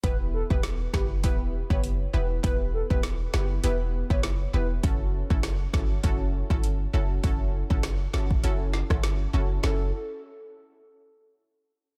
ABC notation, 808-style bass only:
X:1
M:4/4
L:1/16
Q:"Swing 16ths" 1/4=100
K:F#phr
V:1 name="808-style bass" clef=bass
E,,,3 E,,,3 F,,,2 E,,,3 F,,,3 E,,,2 | E,,,3 E,,,3 F,,,2 E,,,3 F,,,3 E,,,2 | F,,,3 F,,,3 G,,,2 F,,,3 G,,,3 F,,,2 | F,,,3 F,,,3 G,,,2 F,,,3 G,,,3 F,,,2 |
F,,,2 z12 z2 |]